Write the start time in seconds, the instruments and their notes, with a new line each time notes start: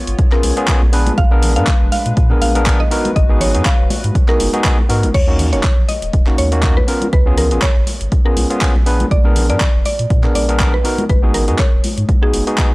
Already playing: analog synth pad B3 F4 C#5
0.07 sub bass G#1, closed hi-hat
0.19 kick, closed hi-hat
0.32 tine electric piano B3 C#4 F4 G#4, synth pluck A#4, clap
0.43 sub bass B1, open hi-hat, high conga
0.57 tine electric piano B3 C#4 F4 G#4, closed hi-hat
0.68 tine electric piano B3 C#4 F4 G#4, kick, clap, closed hi-hat
0.82 sub bass A#1, muted conga
0.92 analog synth pad G#3 D4 B4, tine electric piano B3 D4 G#4 B4, open hi-hat
1.07 closed hi-hat, high conga
1.18 sub bass A#1, synth pluck F5, kick, closed hi-hat
1.31 tine electric piano B3 D4 G#4 A#4
1.42 open hi-hat, muted conga, low conga
1.56 sub bass A#2, tine electric piano B3 D4 G#4 A#4, synth pluck F5, closed hi-hat
1.67 kick, clap, closed hi-hat
1.81 sub bass F1
1.92 synth pluck F5, open hi-hat, muted conga
2.06 sub bass A#2, closed hi-hat
2.17 sub bass A#2, kick, closed hi-hat
2.30 tine electric piano B3 D4 G#4 A#4
2.41 sub bass A#1, synth pluck F5, open hi-hat, high conga
2.55 tine electric piano B3 D4 G#4 A#4, closed hi-hat
2.66 tine electric piano B3 D4 G#4 A#4, kick, clap, closed hi-hat
2.80 synth pluck D#5, muted conga
2.91 tine electric piano B3 D#4 F#4 A#4, analog synth pad F#4 B4, open hi-hat
3.05 closed hi-hat, muted conga, high conga
3.16 sub bass G#1, synth pluck D#5, kick, closed hi-hat
3.29 tine electric piano B3 D#4 F#4 G#4
3.41 synth pluck C#5, open hi-hat, low conga
3.54 sub bass G#2, tine electric piano B3 D#4 F#4 G#4, closed hi-hat
3.65 synth pluck F5, kick, clap, closed hi-hat
3.79 sub bass D#1
3.90 open hi-hat, muted conga, high conga
4.04 sub bass G#2, closed hi-hat
4.15 kick, closed hi-hat
4.28 tine electric piano B3 D#4 F#4 G#4, synth pluck A#4, clap, muted conga
4.40 sub bass F#1, open hi-hat, high conga
4.53 tine electric piano B3 D#4 F#4 G#4, closed hi-hat
4.64 tine electric piano B3 D#4 F#4 G#4, kick, clap, closed hi-hat
4.79 muted conga
4.89 sub bass G#2, tine electric piano B3 D#4 F#4 A#4, open hi-hat
5.03 sub bass F#1, closed hi-hat, high conga
5.14 sub bass D#2, synth pluck C#5, kick, closed hi-hat, crash
5.27 tine electric piano A#3 C#4 D#4 F#4
5.39 open hi-hat, muted conga, low conga
5.52 sub bass D#1, tine electric piano A#3 C#4 D#4 F#4, synth pluck C#5, closed hi-hat
5.63 kick, clap, closed hi-hat
5.78 sub bass A#1
5.89 synth pluck D#5, open hi-hat, muted conga
6.02 sub bass D#1, closed hi-hat
6.13 sub bass D#1, kick, closed hi-hat
6.27 tine electric piano A#3 C#4 D#4 F#4, clap
6.38 sub bass D#2, synth pluck C#5, open hi-hat, high conga
6.52 tine electric piano A#3 C#4 D#4 F#4, closed hi-hat
6.63 tine electric piano A#3 C#4 D#4 F#4, kick, clap, closed hi-hat
6.77 synth pluck B4, muted conga
6.87 tine electric piano B3 C#4 F4 A#4, open hi-hat
7.01 closed hi-hat, muted conga, high conga
7.13 sub bass C#2, synth pluck B4, kick, closed hi-hat
7.26 tine electric piano B3 C#4 F4 G#4
7.38 synth pluck A#4, open hi-hat, low conga
7.51 sub bass G#1, tine electric piano B3 C#4 F4 G#4, closed hi-hat
7.62 synth pluck C#5, kick, clap, closed hi-hat
7.76 sub bass G#1
7.87 open hi-hat, muted conga
8.01 sub bass G#1, closed hi-hat
8.12 kick, closed hi-hat
8.25 tine electric piano B3 C#4 F4 G#4, synth pluck A#4
8.37 sub bass B1, open hi-hat, high conga
8.50 tine electric piano B3 C#4 F4 G#4, closed hi-hat
8.61 tine electric piano B3 C#4 F4 G#4, kick, clap, closed hi-hat
8.75 sub bass A#1, muted conga
8.86 tine electric piano B3 D4 G#4 B4, open hi-hat
9.00 closed hi-hat, high conga
9.11 sub bass A#1, synth pluck D5, kick, closed hi-hat
9.24 tine electric piano B3 D4 G#4 A#4
9.36 open hi-hat, muted conga, low conga
9.49 sub bass A#2, tine electric piano B3 D4 G#4 A#4, synth pluck D5, closed hi-hat
9.60 kick, clap, closed hi-hat
9.74 sub bass F1
9.85 synth pluck D5, open hi-hat, muted conga
9.99 sub bass A#2, closed hi-hat
10.10 sub bass A#2, kick, closed hi-hat
10.23 tine electric piano B3 D4 G#4 A#4, clap
10.35 sub bass A#1, synth pluck D5, open hi-hat, high conga
10.48 tine electric piano B3 D4 G#4 A#4, closed hi-hat
10.59 tine electric piano B3 D4 G#4 A#4, kick, clap, closed hi-hat
10.74 synth pluck B4, muted conga
10.84 tine electric piano B3 D#4 F#4 A#4, open hi-hat
10.98 closed hi-hat, muted conga, high conga
11.09 sub bass G#1, synth pluck B4, kick, closed hi-hat
11.23 tine electric piano B3 D#4 F#4 G#4
11.34 synth pluck A#4, open hi-hat, low conga
11.47 sub bass G#2, tine electric piano B3 D#4 F#4 G#4, closed hi-hat
11.59 synth pluck C#5, kick, clap, closed hi-hat
11.73 sub bass D#1
11.84 open hi-hat, muted conga, high conga
11.98 sub bass G#2, closed hi-hat
12.09 kick, closed hi-hat
12.22 tine electric piano B3 D#4 F#4 G#4, synth pluck G#4
12.33 sub bass F#1, open hi-hat, high conga
12.47 tine electric piano B3 D#4 F#4 G#4, closed hi-hat
12.58 tine electric piano B3 D#4 F#4 G#4, kick, clap, closed hi-hat